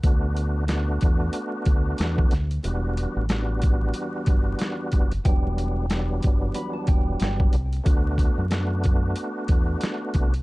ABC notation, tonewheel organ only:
X:1
M:4/4
L:1/16
Q:"Swing 16ths" 1/4=92
K:Em
V:1 name="Tonewheel organ"
[A,B,DF]4 [A,B,DF]8- [A,B,DF]2 z2 | [E,,G,B,DF]4 [E,,G,B,DF]8- [E,,G,B,DF]3 z | [E,,F,G,B,D]4 [E,,F,G,B,D]8- [E,,F,G,B,D]2 z2 | [A,B,DF]4 [A,B,DF]8- [A,B,DF]3 z |]